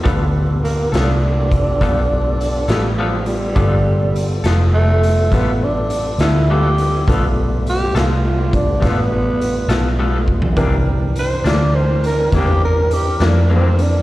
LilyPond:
<<
  \new Staff \with { instrumentName = "Upright piano" } { \time 12/8 \key g \mixolydian \tempo 4. = 68 <d' f' a' b'>1. | <d' f' a' d''>1. | <d' f' a' b'>1. | <d' e' g' bes'>1. | }
  \new Staff \with { instrumentName = "Tenor saxophone" } { \time 12/8 \key g \mixolydian r4 bes8 d'2. g8 f8 g8~ | g4. r8 a4 b8 d'4 e'8 g'4 | r4 g'8 f'4 d'8 b2 r4 | r4 c''8 d''8 c''8 bes'8 g'8 bes'8 g'8 d'8 c'8 d'8 | }
  \new Staff \with { instrumentName = "Tonewheel organ" } { \time 12/8 \key g \mixolydian <b f' g' a'>1. | <g b f' a'>1. | <g a b f'>1. | <e c' d' bes'>1. | }
  \new Staff \with { instrumentName = "Clean electric guitar" } { \time 12/8 \key g \mixolydian <g b f' a'>8 r4 <b f' a'>8 r4 <g b f' a'>8 r4 <b f' a'>8 <g b f' a'>8 r8 | <g b f' a'>8 r4 <b f' a'>8 r4 <g b f' a'>8 r4 <b f' a'>8 <g b f' a'>8 r8 | <g b f' a'>8 r4 <b f' a'>8 r4 <g b f' a'>8 r4 <b f' a'>8 <g b f' a'>8 r8 | <c e bes d'>8 r4 <e bes d'>8 r4 <c e bes d'>8 r4 <e bes d'>8 <c e bes d'>8 r8 | }
  \new Staff \with { instrumentName = "Fingered electric bass" } { \clef bass \time 12/8 \key g \mixolydian d,4. c,4. b,,4. a,,4. | g,,4. f,,4. a,,4. d,4. | b,,4. c,4. a,,4. b,,4. | c,4. d,4. e,4. f,4. | }
  \new DrumStaff \with { instrumentName = "Drums" } \drummode { \time 12/8 <hh bd>4 hh8 <hh sn>4 <hh bd>8 <hh bd>4 hh8 <hh sn>4 hh8 | <hh bd>4 hh8 <hh sn>4 hh8 <hh bd sn>4 hh8 <hh sn>4 hh8 | <hh bd>4 hh8 <hh sn>4 <hh bd>8 <hh bd sn>4 hh8 <hh sn>4 bd16 tomfh16 | <hh bd>4 hh8 <hh sn>4 hh8 <hh bd sn>4 hh8 <hh sn>4 hh8 | }
>>